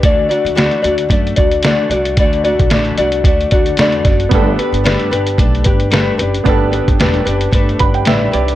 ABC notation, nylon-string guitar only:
X:1
M:4/4
L:1/8
Q:"Swing 16ths" 1/4=112
K:G
V:1 name="Nylon-string guitar"
[D,E,A,DFd] [A,DFd] [D,E,A,DFd] [A,DFd] [A,DFd] [A,DFd] [D,E,A,DFd] [A,DFd] | [D,E,A,DFd] [A,DFd] [D,E,A,DFd] [A,DFd] [A,DFd] [A,DFd] [D,E,A,DFd] [A,DFd] | [G,A,DGB] [DGB] [G,A,DGB] [DGB] [A,DGB] [DGB] [G,A,DGB] [DGB] | [G,A,DGB] [DGB] [G,A,DGB] [DGB] [A,DGB] [DGB] [G,A,DGB] [DGB] |]